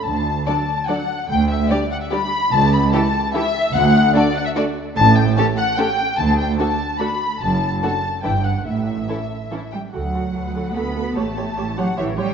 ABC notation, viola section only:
X:1
M:3/4
L:1/8
Q:1/4=147
K:D
V:1 name="Viola section"
z2 [F,D]2 [F,D]2 | z2 [G,D]2 [G,D]2 | z2 [E,E]2 [E,E]2 | z2 [A,D]2 [A,D]2 |
z2 [A,C]2 [A,C]2 | z2 [A,D]2 [A,D]2 | z2 [A,D]2 [E,D]2 | z2 [E,C]2 [E,C]2 |
[FA] [FA] [FA] [FA] [FA] [FA] | [Gc] [Gc] [Gc] [Gc] [Gc] [Gc] |]